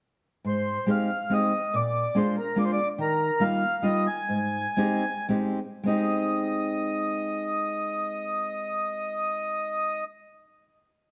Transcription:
0, 0, Header, 1, 3, 480
1, 0, Start_track
1, 0, Key_signature, -4, "major"
1, 0, Tempo, 426136
1, 496, Time_signature, 3, 2, 24, 8
1, 4324, Tempo, 469116
1, 5284, Tempo, 524017
1, 5764, Tempo, 579151
1, 7684, Tempo, 597015
1, 10492, End_track
2, 0, Start_track
2, 0, Title_t, "Accordion"
2, 0, Program_c, 0, 21
2, 531, Note_on_c, 0, 72, 68
2, 1017, Note_off_c, 0, 72, 0
2, 1022, Note_on_c, 0, 77, 57
2, 1500, Note_on_c, 0, 75, 68
2, 1501, Note_off_c, 0, 77, 0
2, 1976, Note_off_c, 0, 75, 0
2, 1978, Note_on_c, 0, 74, 77
2, 2441, Note_on_c, 0, 72, 76
2, 2450, Note_off_c, 0, 74, 0
2, 2654, Note_off_c, 0, 72, 0
2, 2679, Note_on_c, 0, 70, 58
2, 2910, Note_off_c, 0, 70, 0
2, 2913, Note_on_c, 0, 74, 72
2, 2976, Note_off_c, 0, 74, 0
2, 2981, Note_on_c, 0, 72, 50
2, 3053, Note_off_c, 0, 72, 0
2, 3076, Note_on_c, 0, 74, 90
2, 3249, Note_off_c, 0, 74, 0
2, 3395, Note_on_c, 0, 70, 75
2, 3844, Note_on_c, 0, 77, 91
2, 3865, Note_off_c, 0, 70, 0
2, 4318, Note_on_c, 0, 75, 82
2, 4340, Note_off_c, 0, 77, 0
2, 4560, Note_off_c, 0, 75, 0
2, 4564, Note_on_c, 0, 80, 82
2, 5730, Note_off_c, 0, 80, 0
2, 6237, Note_on_c, 0, 75, 58
2, 9633, Note_off_c, 0, 75, 0
2, 10492, End_track
3, 0, Start_track
3, 0, Title_t, "Steel-string acoustic guitar"
3, 0, Program_c, 1, 25
3, 501, Note_on_c, 1, 44, 46
3, 864, Note_off_c, 1, 44, 0
3, 973, Note_on_c, 1, 56, 54
3, 985, Note_on_c, 1, 60, 52
3, 992, Note_on_c, 1, 67, 59
3, 993, Note_on_c, 1, 63, 42
3, 1225, Note_off_c, 1, 56, 0
3, 1231, Note_off_c, 1, 60, 0
3, 1233, Note_off_c, 1, 63, 0
3, 1234, Note_off_c, 1, 67, 0
3, 1459, Note_on_c, 1, 56, 50
3, 1467, Note_on_c, 1, 60, 45
3, 1473, Note_on_c, 1, 63, 47
3, 1479, Note_on_c, 1, 67, 58
3, 1706, Note_off_c, 1, 56, 0
3, 1710, Note_off_c, 1, 60, 0
3, 1713, Note_off_c, 1, 63, 0
3, 1714, Note_off_c, 1, 67, 0
3, 1956, Note_on_c, 1, 46, 62
3, 2306, Note_off_c, 1, 46, 0
3, 2419, Note_on_c, 1, 56, 63
3, 2424, Note_on_c, 1, 58, 45
3, 2430, Note_on_c, 1, 62, 55
3, 2439, Note_on_c, 1, 65, 60
3, 2659, Note_off_c, 1, 56, 0
3, 2661, Note_off_c, 1, 58, 0
3, 2665, Note_off_c, 1, 62, 0
3, 2667, Note_off_c, 1, 65, 0
3, 2882, Note_on_c, 1, 56, 63
3, 2888, Note_on_c, 1, 58, 46
3, 2895, Note_on_c, 1, 62, 50
3, 2903, Note_on_c, 1, 65, 69
3, 3126, Note_off_c, 1, 56, 0
3, 3129, Note_off_c, 1, 58, 0
3, 3133, Note_off_c, 1, 62, 0
3, 3136, Note_off_c, 1, 65, 0
3, 3361, Note_on_c, 1, 51, 61
3, 3713, Note_off_c, 1, 51, 0
3, 3828, Note_on_c, 1, 55, 58
3, 3836, Note_on_c, 1, 58, 54
3, 3836, Note_on_c, 1, 63, 51
3, 3841, Note_on_c, 1, 65, 69
3, 4076, Note_off_c, 1, 55, 0
3, 4079, Note_off_c, 1, 63, 0
3, 4080, Note_off_c, 1, 58, 0
3, 4082, Note_off_c, 1, 65, 0
3, 4307, Note_on_c, 1, 55, 52
3, 4310, Note_on_c, 1, 58, 47
3, 4319, Note_on_c, 1, 63, 55
3, 4322, Note_on_c, 1, 65, 73
3, 4548, Note_off_c, 1, 58, 0
3, 4549, Note_off_c, 1, 55, 0
3, 4554, Note_off_c, 1, 63, 0
3, 4554, Note_off_c, 1, 65, 0
3, 4782, Note_on_c, 1, 44, 54
3, 5151, Note_off_c, 1, 44, 0
3, 5273, Note_on_c, 1, 56, 59
3, 5278, Note_on_c, 1, 60, 64
3, 5287, Note_on_c, 1, 63, 64
3, 5290, Note_on_c, 1, 67, 74
3, 5515, Note_off_c, 1, 56, 0
3, 5518, Note_off_c, 1, 60, 0
3, 5522, Note_off_c, 1, 63, 0
3, 5522, Note_off_c, 1, 67, 0
3, 5751, Note_on_c, 1, 56, 65
3, 5756, Note_on_c, 1, 60, 58
3, 5764, Note_on_c, 1, 63, 53
3, 5766, Note_on_c, 1, 67, 70
3, 5992, Note_off_c, 1, 56, 0
3, 5995, Note_off_c, 1, 60, 0
3, 5998, Note_off_c, 1, 63, 0
3, 5999, Note_off_c, 1, 67, 0
3, 6206, Note_on_c, 1, 56, 69
3, 6225, Note_on_c, 1, 60, 63
3, 6238, Note_on_c, 1, 63, 69
3, 6250, Note_on_c, 1, 67, 68
3, 9604, Note_off_c, 1, 56, 0
3, 9621, Note_off_c, 1, 60, 0
3, 9634, Note_off_c, 1, 63, 0
3, 9646, Note_off_c, 1, 67, 0
3, 10492, End_track
0, 0, End_of_file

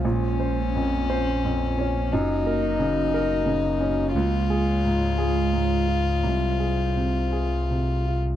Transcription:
0, 0, Header, 1, 5, 480
1, 0, Start_track
1, 0, Key_signature, -5, "minor"
1, 0, Tempo, 684932
1, 29, Time_signature, 6, 3, 24, 8
1, 3868, Tempo, 724638
1, 5750, End_track
2, 0, Start_track
2, 0, Title_t, "Ambient pad"
2, 0, Program_c, 0, 92
2, 0, Note_on_c, 0, 65, 67
2, 32, Note_on_c, 0, 58, 58
2, 34, Note_on_c, 0, 61, 56
2, 1480, Note_on_c, 0, 75, 56
2, 1481, Note_off_c, 0, 65, 0
2, 1483, Note_on_c, 0, 66, 58
2, 1485, Note_off_c, 0, 61, 0
2, 2900, Note_off_c, 0, 75, 0
2, 2901, Note_off_c, 0, 66, 0
2, 2902, Note_on_c, 0, 56, 55
2, 2903, Note_off_c, 0, 58, 0
2, 2904, Note_on_c, 0, 65, 54
2, 2905, Note_on_c, 0, 73, 56
2, 4336, Note_on_c, 0, 72, 47
2, 4342, Note_off_c, 0, 73, 0
2, 5750, Note_off_c, 0, 56, 0
2, 5750, Note_off_c, 0, 65, 0
2, 5750, Note_off_c, 0, 72, 0
2, 5750, End_track
3, 0, Start_track
3, 0, Title_t, "Violin"
3, 0, Program_c, 1, 40
3, 32, Note_on_c, 1, 61, 53
3, 1488, Note_on_c, 1, 63, 55
3, 1499, Note_off_c, 1, 61, 0
3, 2900, Note_off_c, 1, 63, 0
3, 2905, Note_on_c, 1, 65, 60
3, 5625, Note_off_c, 1, 65, 0
3, 5750, End_track
4, 0, Start_track
4, 0, Title_t, "Grand piano"
4, 0, Program_c, 2, 0
4, 0, Control_c, 2, 64, 127
4, 32, Note_on_c, 2, 34, 54
4, 42, Control_c, 2, 64, 0
4, 150, Control_c, 2, 64, 127
4, 278, Note_on_c, 2, 72, 37
4, 527, Note_on_c, 2, 41, 37
4, 665, Note_off_c, 2, 72, 0
4, 768, Note_on_c, 2, 72, 48
4, 912, Note_off_c, 2, 41, 0
4, 1012, Note_on_c, 2, 41, 40
4, 1154, Note_off_c, 2, 72, 0
4, 1252, Note_on_c, 2, 61, 42
4, 1393, Note_off_c, 2, 41, 0
4, 1456, Note_off_c, 2, 34, 0
4, 1485, Note_off_c, 2, 61, 0
4, 1493, Note_on_c, 2, 42, 60
4, 1495, Control_c, 2, 64, 0
4, 1608, Control_c, 2, 64, 127
4, 1728, Note_on_c, 2, 70, 47
4, 1957, Note_on_c, 2, 49, 47
4, 2097, Note_off_c, 2, 70, 0
4, 2200, Note_on_c, 2, 70, 56
4, 2331, Note_off_c, 2, 49, 0
4, 2424, Note_on_c, 2, 49, 47
4, 2573, Note_off_c, 2, 70, 0
4, 2667, Note_on_c, 2, 61, 46
4, 2806, Note_off_c, 2, 49, 0
4, 2878, Note_off_c, 2, 42, 0
4, 2904, Note_off_c, 2, 61, 0
4, 2912, Note_on_c, 2, 37, 61
4, 2914, Control_c, 2, 64, 0
4, 3048, Control_c, 2, 64, 127
4, 3154, Note_on_c, 2, 68, 47
4, 3391, Note_on_c, 2, 44, 40
4, 3532, Note_off_c, 2, 68, 0
4, 3631, Note_on_c, 2, 68, 48
4, 3774, Note_off_c, 2, 44, 0
4, 3874, Note_on_c, 2, 44, 35
4, 4011, Note_off_c, 2, 68, 0
4, 4106, Note_on_c, 2, 65, 30
4, 4248, Note_off_c, 2, 44, 0
4, 4319, Note_off_c, 2, 37, 0
4, 4341, Note_on_c, 2, 36, 37
4, 4342, Note_off_c, 2, 65, 0
4, 4353, Control_c, 2, 64, 0
4, 4481, Control_c, 2, 64, 127
4, 4582, Note_on_c, 2, 68, 26
4, 4822, Note_on_c, 2, 48, 26
4, 4967, Note_off_c, 2, 68, 0
4, 5063, Note_on_c, 2, 68, 30
4, 5209, Note_off_c, 2, 48, 0
4, 5311, Note_on_c, 2, 48, 24
4, 5451, Note_off_c, 2, 68, 0
4, 5555, Note_on_c, 2, 65, 24
4, 5696, Note_off_c, 2, 48, 0
4, 5750, Note_off_c, 2, 36, 0
4, 5750, Note_off_c, 2, 65, 0
4, 5750, End_track
5, 0, Start_track
5, 0, Title_t, "Sub bass"
5, 0, Program_c, 3, 38
5, 31, Note_on_c, 3, 34, 53
5, 1490, Note_on_c, 3, 30, 58
5, 1501, Note_off_c, 3, 34, 0
5, 2906, Note_on_c, 3, 37, 58
5, 2916, Note_off_c, 3, 30, 0
5, 4344, Note_on_c, 3, 36, 50
5, 4353, Note_off_c, 3, 37, 0
5, 5750, Note_off_c, 3, 36, 0
5, 5750, End_track
0, 0, End_of_file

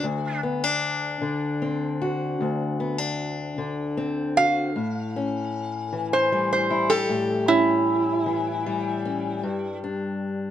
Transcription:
0, 0, Header, 1, 3, 480
1, 0, Start_track
1, 0, Tempo, 782269
1, 25, Time_signature, 12, 3, 24, 8
1, 6447, End_track
2, 0, Start_track
2, 0, Title_t, "Resonator guitar played with a steel bar"
2, 0, Program_c, 0, 25
2, 0, Note_on_c, 0, 66, 95
2, 245, Note_off_c, 0, 66, 0
2, 2682, Note_on_c, 0, 77, 111
2, 3729, Note_off_c, 0, 77, 0
2, 3762, Note_on_c, 0, 72, 75
2, 3987, Note_off_c, 0, 72, 0
2, 4004, Note_on_c, 0, 72, 78
2, 4228, Note_off_c, 0, 72, 0
2, 4232, Note_on_c, 0, 69, 80
2, 4578, Note_off_c, 0, 69, 0
2, 4591, Note_on_c, 0, 64, 91
2, 6002, Note_off_c, 0, 64, 0
2, 6447, End_track
3, 0, Start_track
3, 0, Title_t, "Steel-string acoustic guitar"
3, 0, Program_c, 1, 25
3, 0, Note_on_c, 1, 50, 62
3, 20, Note_on_c, 1, 38, 71
3, 265, Note_on_c, 1, 59, 55
3, 391, Note_off_c, 1, 59, 0
3, 391, Note_on_c, 1, 62, 47
3, 737, Note_off_c, 1, 50, 0
3, 745, Note_on_c, 1, 50, 63
3, 993, Note_on_c, 1, 60, 54
3, 1236, Note_on_c, 1, 66, 65
3, 1463, Note_off_c, 1, 38, 0
3, 1476, Note_on_c, 1, 38, 68
3, 1709, Note_off_c, 1, 62, 0
3, 1718, Note_on_c, 1, 59, 57
3, 1830, Note_off_c, 1, 59, 0
3, 1830, Note_on_c, 1, 62, 49
3, 2186, Note_off_c, 1, 50, 0
3, 2196, Note_on_c, 1, 50, 61
3, 2430, Note_off_c, 1, 60, 0
3, 2438, Note_on_c, 1, 60, 60
3, 2671, Note_off_c, 1, 66, 0
3, 2682, Note_on_c, 1, 66, 62
3, 2883, Note_off_c, 1, 60, 0
3, 2885, Note_off_c, 1, 66, 0
3, 2908, Note_off_c, 1, 62, 0
3, 2911, Note_off_c, 1, 38, 0
3, 2911, Note_off_c, 1, 50, 0
3, 2919, Note_on_c, 1, 45, 73
3, 3167, Note_on_c, 1, 61, 58
3, 3636, Note_on_c, 1, 52, 64
3, 3879, Note_on_c, 1, 55, 56
3, 4114, Note_on_c, 1, 64, 65
3, 4232, Note_off_c, 1, 64, 0
3, 4232, Note_on_c, 1, 67, 58
3, 4346, Note_off_c, 1, 45, 0
3, 4353, Note_on_c, 1, 45, 75
3, 4588, Note_off_c, 1, 61, 0
3, 4596, Note_on_c, 1, 61, 58
3, 5060, Note_off_c, 1, 52, 0
3, 5068, Note_on_c, 1, 52, 63
3, 5308, Note_off_c, 1, 55, 0
3, 5316, Note_on_c, 1, 55, 58
3, 5548, Note_off_c, 1, 61, 0
3, 5556, Note_on_c, 1, 61, 58
3, 5757, Note_off_c, 1, 52, 0
3, 5761, Note_off_c, 1, 61, 0
3, 5787, Note_off_c, 1, 67, 0
3, 5788, Note_off_c, 1, 45, 0
3, 5788, Note_on_c, 1, 43, 70
3, 6036, Note_on_c, 1, 62, 57
3, 6447, Note_off_c, 1, 43, 0
3, 6447, Note_off_c, 1, 55, 0
3, 6447, Note_off_c, 1, 62, 0
3, 6447, End_track
0, 0, End_of_file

